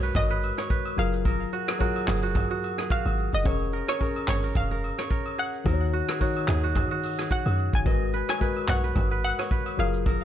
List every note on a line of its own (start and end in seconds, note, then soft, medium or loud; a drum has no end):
0.00 0.12 B1 medium
0.00 0.99 G#3 medium
0.00 1.00 F#4 medium
0.00 0.99 A#4 medium
0.00 1.00 B4 medium
0.00 0.30 B4 medium
0.00 0.17 C#5 medium
0.00 0.56 C#5 medium
0.00 0.58 C#5 medium
0.00 0.12 D#5 medium
0.00 shaker medium
0.15 0.52 G#1 loud
0.15 1.01 D#5 loud
0.15 kick loud
0.15 mid tom medium
0.15 high agogo medium
0.15 shaker medium
0.31 0.70 B4 medium
0.43 high agogo medium
0.43 shaker medium
0.58 1.73 C#5 medium
0.58 cross-stick loud
0.58 shaker medium
0.70 1.31 B4 medium
0.70 kick loud
0.70 shaker medium
0.86 high agogo medium
0.97 1.45 F#1 loud
0.97 1.69 F#3 medium
0.97 1.69 F4 medium
0.97 1.68 G#4 medium
0.97 1.70 G#4 medium
0.97 1.70 A#4 medium
0.97 1.50 F5 medium
0.97 shaker soft
1.13 shaker medium
1.25 2.53 A#4 medium
1.25 kick loud
1.25 high agogo medium
1.25 shaker medium
1.52 1.80 F#4 medium
1.52 shaker medium
1.68 2.08 G#4 medium
1.68 cross-stick loud
1.68 high agogo medium
1.68 shaker medium
1.79 2.75 F#3 medium
1.79 2.75 F4 medium
1.79 2.23 F#4 loud
1.79 2.75 G#4 medium
1.79 2.76 A#4 loud
1.79 kick medium
1.79 shaker medium
1.96 high agogo medium
2.08 2.45 F#1 medium
2.08 2.78 G#4 medium
2.08 cross-stick medium
2.08 clap medium
2.08 mid tom loud
2.08 shaker soft
2.23 2.50 F#4 medium
2.23 shaker medium
2.35 kick loud
2.35 mid tom medium
2.35 high agogo medium
2.35 shaker medium
2.51 2.90 F#4 medium
2.63 high agogo medium
2.63 shaker medium
2.78 4.15 G#4 medium
2.78 cross-stick loud
2.78 shaker medium
2.90 4.37 F#4 medium
2.90 3.35 F5 medium
2.90 kick loud
2.90 shaker medium
3.06 3.29 G#1 medium
3.06 high agogo medium
3.18 shaker soft
3.33 3.44 F#1 medium
3.33 3.90 D#5 medium
3.33 shaker medium
3.44 3.82 F1 loud
3.44 3.93 C#4 medium
3.44 3.93 G#4 medium
3.44 3.94 A#4 medium
3.44 3.88 C#5 medium
3.44 kick loud
3.44 high agogo medium
3.44 shaker medium
3.73 4.01 A#4 medium
3.73 shaker medium
3.88 4.28 C#5 medium
3.88 cross-stick loud
3.88 high agogo medium
3.88 shaker medium
3.99 4.95 C#4 medium
3.99 4.96 G#4 medium
3.99 4.43 A#4 medium
3.99 4.96 A#4 medium
3.99 kick loud
3.99 shaker medium
4.16 high agogo medium
4.28 4.52 G#1 medium
4.28 4.98 C#5 medium
4.28 4.57 C#5 medium
4.28 cross-stick medium
4.28 clap medium
4.28 mid tom loud
4.28 shaker soft
4.43 4.71 A#4 medium
4.43 shaker medium
4.55 4.92 F1 loud
4.55 5.41 F5 loud
4.55 kick loud
4.55 mid tom medium
4.55 high agogo medium
4.55 shaker medium
4.71 5.11 A#4 medium
4.83 high agogo medium
4.83 shaker medium
4.99 6.13 C#5 medium
4.99 cross-stick loud
4.99 shaker medium
5.10 5.65 A#4 medium
5.10 kick loud
5.10 shaker medium
5.26 high agogo medium
5.38 6.08 G#4 medium
5.38 5.90 F#5 loud
5.38 shaker soft
5.53 shaker medium
5.64 6.03 D#2 loud
5.64 6.13 D#3 medium
5.64 6.13 D#4 medium
5.64 6.14 F#4 medium
5.64 6.93 A#4 medium
5.64 5.73 C5 medium
5.64 kick loud
5.64 high agogo medium
5.64 shaker medium
5.73 6.17 C#5 medium
5.93 6.21 F#4 medium
5.93 shaker medium
6.08 6.48 G#4 medium
6.08 cross-stick loud
6.08 high agogo medium
6.08 shaker medium
6.20 7.15 D#3 medium
6.20 7.16 D#4 medium
6.20 6.63 F#4 medium
6.20 7.16 F#4 medium
6.20 7.16 C#5 loud
6.20 kick loud
6.20 shaker medium
6.37 high agogo medium
6.48 6.85 D#2 medium
6.48 7.18 G#4 medium
6.48 cross-stick medium
6.48 clap medium
6.48 mid tom medium
6.48 shaker soft
6.63 6.91 F#4 medium
6.63 shaker medium
6.75 kick loud
6.75 mid tom medium
6.75 high agogo medium
6.75 shaker medium
6.91 7.31 F#4 medium
7.03 open hi-hat medium
7.03 high agogo medium
7.03 shaker medium
7.19 8.55 G#4 medium
7.19 cross-stick loud
7.19 shaker medium
7.30 8.77 F#4 medium
7.30 7.71 F#5 loud
7.30 kick loud
7.30 hi-hat pedal medium
7.30 shaker medium
7.46 7.70 F#2 loud
7.46 high agogo medium
7.59 shaker soft
7.73 7.84 F#1 loud
7.73 8.29 G#5 loud
7.73 kick loud
7.73 shaker medium
7.85 8.23 G#1 loud
7.85 8.33 G#3 medium
7.85 8.33 F#4 medium
7.85 8.34 A#4 medium
7.85 8.34 B4 medium
7.85 8.93 D#5 medium
7.85 kick loud
7.85 high agogo medium
7.85 shaker medium
8.13 8.41 B4 medium
8.13 shaker medium
8.29 8.68 C#5 medium
8.29 8.66 G#5 loud
8.29 cross-stick loud
8.29 high agogo medium
8.29 shaker medium
8.40 9.35 G#3 medium
8.40 9.36 F#4 medium
8.40 9.36 A#4 medium
8.40 8.83 B4 medium
8.40 9.37 B4 medium
8.40 kick loud
8.40 shaker medium
8.57 high agogo medium
8.68 8.92 B1 medium
8.68 9.38 C#5 medium
8.68 9.23 F#5 loud
8.68 cross-stick medium
8.68 clap medium
8.68 mid tom medium
8.68 shaker soft
8.83 9.11 B4 medium
8.83 shaker medium
8.95 9.33 G#1 loud
8.95 kick loud
8.95 mid tom medium
8.95 high agogo medium
8.95 shaker medium
9.11 9.51 B4 medium
9.24 9.81 F#5 medium
9.24 high agogo medium
9.24 shaker medium
9.39 10.24 C#5 medium
9.39 cross-stick loud
9.39 shaker medium
9.51 10.12 B4 medium
9.51 kick loud
9.51 shaker medium
9.66 high agogo medium
9.77 10.24 F#1 loud
9.77 10.24 F#3 medium
9.77 10.24 F4 medium
9.77 10.24 G#4 medium
9.77 10.24 A#4 medium
9.77 10.24 F5 medium
9.77 shaker soft
9.94 shaker medium
10.06 10.24 A#4 medium
10.06 kick loud
10.06 high agogo medium
10.06 shaker medium